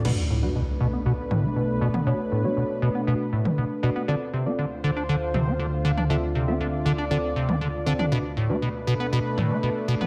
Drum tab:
CC |x---------------|----------------|----------------|----------------|
T2 |----------o----o|-----------o----|----------o----o|-----------o---o|

CC |----------------|
T2 |----------o----o|